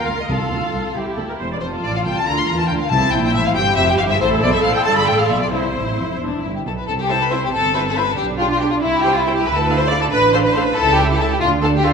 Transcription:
Already playing: violin section F4 A#4, viola section A#4
0.06 double bass section C#2, cello section C#2, violin section F5
0.20 violin section D#5
0.29 cello section C2, double bass section C2, timpani C3, violin section F4 A4 F5, viola section A4
0.51 double bass section D2, cello section D2
0.73 double bass section C2, cello section C2
0.95 double bass section C2, cello section C2, violin section E4 G4, viola section G4
1.17 cello section D2, double bass section D2, viola section A4
1.29 viola section A#4
1.39 double bass section E1, cello section E2, viola section C5
1.52 viola section D5
1.61 double bass section F1, cello section F2, viola section F4, violin section F4 A4 C5
1.84 double bass section A1, cello section A2, violin section D5
1.96 violin section F5
2.05 double bass section C2, cello section C3, violin section G5
2.16 violin section A5
2.26 double bass section D2, cello section D3, violin section F4 A#4 A#5
2.39 violin section C6
2.48 double bass section E2, cello section E3, violin section A#5
2.59 violin section A5
2.68 double bass section D2, cello section D3, violin section G5
2.81 violin section F5
2.91 double bass section C2, timpani C3, cello section C3, viola section E4, violin section E4 C5 A5
3.12 double bass section A#1, cello section A#2, violin section G5
3.25 violin section G5
3.34 double bass section A1, cello section A2, violin section E5
3.46 violin section F5
3.55 double bass section G1, cello section G2, violin section E4 G5, viola section G4
3.76 double bass section F1, cello section F2, violin section E5
3.89 violin section G5
3.98 double bass section G1, cello section G2, violin section F5
4.10 violin section E5
4.20 double bass section A1, cello section A2, violin section E4 C5, viola section A4
4.42 double bass section B1, cello section B2, violin section D5
4.53 violin section E5
4.63 double bass section A1, cello section A2, violin section F5
4.75 violin section G5
4.84 double bass section G1, cello section G2, violin section F4 D5 A5
4.96 violin section B5
5.06 double bass section A1, cello section A2, violin section G5
5.19 violin section F5
5.28 double bass section B1, cello section B2, violin section E5
5.42 violin section D5
5.52 double bass section C2, timpani C3, cello section C3, violin section E4 C5, viola section E4
5.74 double bass section A1, cello section A2
5.97 double bass section F1, cello section F2
6.19 double bass section E1, cello section E2, violin section D4
6.42 double bass section G1, cello section G2, violin section E4
6.55 violin section G4
6.64 double bass section B1, cello section B2, violin section A4
6.78 violin section B4
6.86 double bass section C2, cello section C4, violin section A4
7.00 violin section G4
7.09 viola section E4 C5, violin section A4 E5
7.21 violin section B4
7.30 viola section E4 C5, violin section C5 E5
7.43 violin section G4
7.52 double bass section G1, violin section A4
7.74 viola section E4 C5, violin section B4 E5
7.86 violin section A4
7.96 viola section E4 C5, violin section B4 E5
8.06 violin section A4
8.16 double bass section B1, cello section D4, violin section G4
8.38 viola section D4 G4, violin section F4 G5
8.51 violin section F4
8.60 viola section D4 G4, violin section G4 G5
8.71 violin section F4
8.81 double bass section C2, violin section E4, cello section E4
9.02 viola section E4 C5, violin section G4 G5
9.14 violin section F4
9.22 violin section E4
9.26 viola section E4 C5, violin section G5
9.35 violin section G4
9.46 double bass section D2, violin section B4
9.57 violin section A4
9.66 viola section D4 A4, violin section B4 F5
9.79 violin section C5
9.89 viola section D4 A4, violin section D5 F5
10.02 violin section A4
10.11 double bass section A1, cello section D4, violin section B4
10.34 viola section D4 A4, violin section C5 F5
10.45 violin section B4
10.54 viola section D4 A4, violin section C5 F5
10.66 violin section B4
10.76 double bass section C#2, cello section E4, violin section A4
10.98 viola section E4 A4, violin section G4 E5
11.11 violin section G4
11.20 viola section E4 A4, violin section A4 E5
11.32 violin section G4
11.41 double bass section D2, cello section D4, violin section F4
11.62 viola section D4 A4, violin section A4 F5
11.75 violin section G4
11.84 viola section D4 A4, violin section F4 F5

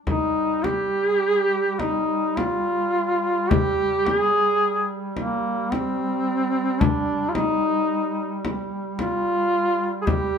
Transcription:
0.06 duduk G3 D#4, frame drum
0.64 duduk G4, frame drum
1.79 duduk D#4, frame drum
2.37 duduk F4, frame drum
3.50 duduk G4, frame drum
4.06 duduk G#4, frame drum
5.17 duduk A#3, frame drum
5.72 duduk C4, frame drum
6.80 duduk D4, frame drum
7.29 duduk F4
7.34 duduk D#4, frame drum
8.45 frame drum
8.98 duduk F4, frame drum
10.01 duduk G#4
10.06 duduk G4, frame drum

